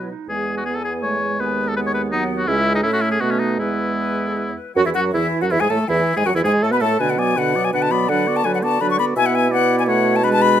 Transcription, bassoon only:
Already playing: B2
0.29 E2
1.40 D#2
2.48 C#2
2.84 A2
3.21 B2
3.59 E2
4.76 F#2
4.86 E2
4.95 F#2
5.14 E2
5.42 F#2
5.51 E2
5.61 G#2
5.70 A2
5.89 E2
6.17 G#2
6.26 F#2
6.35 E2
6.44 G#2
6.62 A2
6.71 B2
6.81 A2
6.99 B2
7.37 B2
7.73 B2
8.08 D3
8.45 D3
8.81 D3
9.16 B2

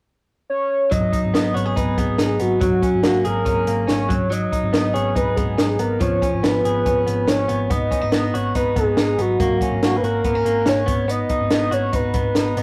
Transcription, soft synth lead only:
0.50 C#5
0.92 D#5
1.35 D#5
1.55 C#5
1.78 B4
1.99 G#4
2.42 F#4
2.62 F#4
3.05 F#4
3.26 A#4
3.89 C#5
4.32 D#5
4.73 D#5
4.94 C#5
5.17 B4
5.36 G#4
5.80 A#4
6.01 C#5
6.44 B4
7.29 C#5
7.71 D#5
8.14 D#5
8.35 C#5
8.56 B4
8.77 G#4
9.21 F#4
9.41 F#4
9.84 F#4
9.96 B4
10.03 A#4
10.68 C#5
11.10 D#5
11.53 D#5
11.73 C#5
11.95 B4
12.58 D#5

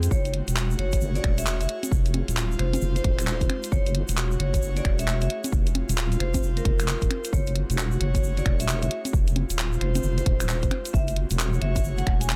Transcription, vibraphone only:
0.11 C#5
0.79 C#5
1.16 D5
1.38 E5
1.61 E5
2.59 C5
2.96 C5
3.72 C#5
4.40 C#5
4.76 D5
4.99 E5
5.22 E5
6.20 C5
6.57 A#4
7.33 C#5
8.01 C#5
8.37 D5
8.60 E5
8.82 E5
9.81 C5
10.18 C5
10.93 E5
11.61 E5
11.98 F#5
12.20 G#5

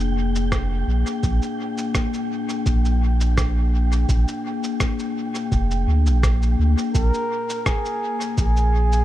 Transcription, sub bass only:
Already playing: F1
0.87 A#1
1.23 A#1
2.66 A#1
4.09 A#1
5.52 F1
5.87 D2
6.07 A#1
6.59 D2
6.95 A#1
8.38 A#1

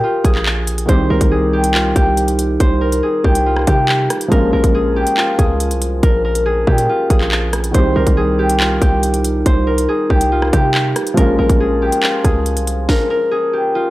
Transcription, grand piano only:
0.86 D#3 G3 C4
0.91 D#4 G4
4.28 F3 G#3 A#3
4.33 C#4 F4
7.71 D#3 G3 C4
7.77 D#4 G4
11.14 F3 G#3 A#3
11.19 C#4 F4

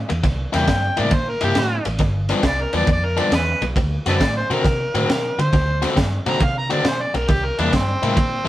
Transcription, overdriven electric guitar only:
0.09 muted overdriven electric guitar stroke
0.23 muted overdriven electric guitar stroke
0.53 C3 G3 A#3 E4
0.68 muted overdriven electric guitar stroke
0.97 C3 G3 A#3 E4
1.11 muted overdriven electric guitar stroke
1.41 C3 G3 A#3 E4
1.57 muted overdriven electric guitar stroke
1.86 muted overdriven electric guitar stroke
2.00 muted overdriven electric guitar stroke
2.30 G2 F3 B3 D4
2.44 muted overdriven electric guitar stroke
2.74 G2 F3 B3 D4
2.88 muted overdriven electric guitar stroke
3.17 G2 F3 B3 D4
3.32 muted overdriven electric guitar stroke
3.62 muted overdriven electric guitar stroke
3.77 muted overdriven electric guitar stroke
4.06 D3 A3 C4 F#4
4.22 muted overdriven electric guitar stroke
4.50 D3 A3 C4 F#4
4.65 muted overdriven electric guitar stroke
4.95 D3 A3 C4 F#4
5.09 muted overdriven electric guitar stroke
5.39 muted overdriven electric guitar stroke
5.53 muted overdriven electric guitar stroke
5.82 D3 A3 C4 F#4
5.97 muted overdriven electric guitar stroke
6.26 D3 A3 C4 F#4
6.41 muted overdriven electric guitar stroke
6.70 D3 A3 C4 F#4
6.84 muted overdriven electric guitar stroke
7.14 muted overdriven electric guitar stroke
7.29 muted overdriven electric guitar stroke
7.59 C3 G3 A#3 E4
7.73 muted overdriven electric guitar stroke
8.03 C3 G3 A#3 E4
8.17 muted overdriven electric guitar stroke
8.45 A#3 E4

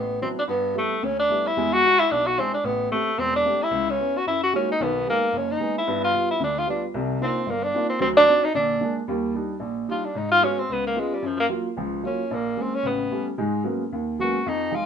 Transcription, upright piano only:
Already playing: A1
0.22 F#3 B3 C4 D4 E4
0.48 G2
0.74 G3 A3 B3 E4
1.03 D2
1.30 G3 A3 B3 E4
1.57 E2 G#3
1.85 G#3 D4 E4
2.11 B1
2.38 G#3 D4 E4
2.64 A1
2.91 A3 C4 G4
3.18 E1 E2
3.45 A3 C4 G4
3.71 C#2
3.99 B3 C#4 E4
4.26 F#2
4.53 G#3 A#3 D#4 E4 F#4
4.80 B1 D#3
5.07 G#3 B3 D#4
5.33 F#1
5.60 G#3 B3 D#4
5.87 G2 B3
6.14 G3 B3 F4
6.40 D2 D3
6.66 G3 B3 F4
6.94 C2 C3
7.21 A#3 C4 D4 D#4 F4
7.46 G1
7.74 A#3 C4 D4 D#4 F4
8.00 D2 F#3
8.28 C4 D4 D#4 F#4
8.54 A#1 D3
8.81 G#3 A#3 D4
9.08 D#2 G3
9.34 G3 D4 D#4
9.60 A#1
9.88 G3 D4 D#4
10.15 G#2
10.41 G#3 B3 F#4
10.69 C#2
10.95 B3 C#4 F4
11.22 F#2
11.49 F#3 A#3 F4
11.77 C#2 F3
12.03 F#3 A#3 F4
12.31 A#1
12.57 G#3 A#3 C#4
12.83 A1 C#3
13.11 G3 A3 B3 C#4
13.38 G#2 G#3
13.64 F#3 G#3 A#3 B3 C#4
13.92 D#2
14.19 F#3 G#3 A#3 B3 C#4
14.46 F2
14.71 F3 G#3 D#4

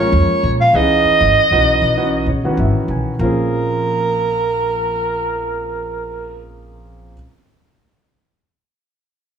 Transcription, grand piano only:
Already playing: F3
0.00 G#3 A#3 C#4 A#4
0.74 E3 B3 C#4 D#4 G#4
1.52 E3 B3 C#4 D#4 F#4
1.97 E3 B3 C#4 D#4 F#4
2.28 D#4 G#4 C#5
2.45 D#3 E3 B3 C#4 F#4
2.60 E5
2.90 G#5
3.21 F3 A#3 C4 C#4 G#4

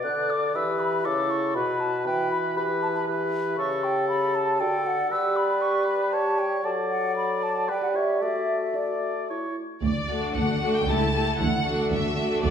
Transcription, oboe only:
Already playing: D5
0.55 B4
1.05 A4
1.56 B4
2.07 B4
2.57 B4
3.08 B4
3.58 A4
4.60 A4
5.12 B4
6.13 C#5
6.65 D5
7.69 B4
7.96 C#5
8.22 D5
8.75 D5
9.30 C#5

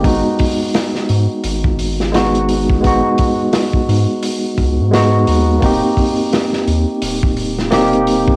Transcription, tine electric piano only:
0.01 G#3 B3
0.05 D#4 F#4
2.12 G#3 B3 D#4 F#4
2.81 G#3 B3
2.85 D#4 F#4
4.91 G#3 B3 D#4 F#4
5.59 A#3 C4
5.64 D#4 G4
7.71 A#3 C4 D#4 G4

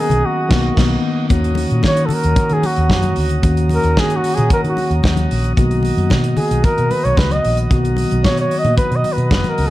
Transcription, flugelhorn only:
0.00 G#4
0.26 F#4
1.87 C#5
2.06 A4
2.14 A#4
2.53 G#4
2.66 F#4
3.73 A#4
3.99 G#4
4.16 F#4
4.35 G#4
4.53 A#4
4.69 F#4
6.37 G#4
6.64 A#4
6.91 B4
7.04 C#5
7.18 B4
7.32 D#5
8.24 C#5
8.41 C#5
8.58 D#5
8.77 B4
8.96 D#5
9.13 B4
9.49 A#4

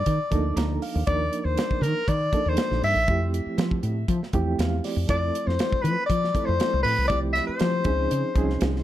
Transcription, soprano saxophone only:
Already playing: D5
1.07 D5
1.40 D5
1.45 C5
1.82 A#4
2.09 D5
2.49 C5
2.84 E5
5.10 D5
5.47 C5
5.82 B4
6.06 D5
6.45 C5
6.83 B4
7.08 D5
7.33 E5
7.47 C5

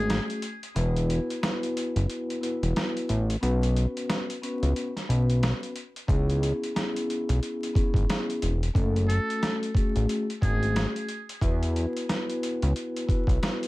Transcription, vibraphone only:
Already playing: A3 C#4 F#4 G#4
0.75 B3 E4 F#4 B4
1.42 B3 E4 F#4 B4
2.40 B3 E4 F#4 B4
3.41 B3 C#4 F#4 B4
4.42 B3 C#4 F#4 B4
5.08 B3 C#4 F#4 B4
6.07 B3 C#4 E4 G#4
6.75 B3 C#4 E4 G#4
7.74 B3 C#4 E4 G#4
8.74 A3 C#4 F#4 A4
9.74 A3 C#4 F#4 G#4
10.41 A3 C#4 F#4 G#4
11.41 B3 E4 F#4 B4
12.08 B3 E4 F#4 B4
13.07 B3 E4 F#4 B4

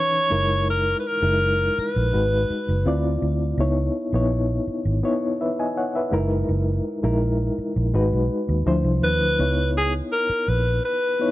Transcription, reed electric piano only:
Already playing: E3 C#4 D#4 B4
0.30 G#3 D#4 E4 A#4
1.22 G#3 D#4 E4 A#4
2.12 G#3 D#4 F#4 B4
2.86 C4 E4 F4 D5
3.59 B3 D#4 E4 C#5
4.14 B3 D#4 E4 C#5
5.03 B3 D#4 E4 C#5
5.41 B4 E5
5.60 D#5 G#5
5.77 C#5 F#5
5.96 B4 E5
6.11 G#3 D#4 E4 A#4
7.03 G#3 D#4 E4 A#4
7.94 G#3 D#4 F#4 B4
8.66 F3 D4 E4 C5
9.39 B3 D#4 E4 C#5
11.20 B3 D#4 E4 C#5

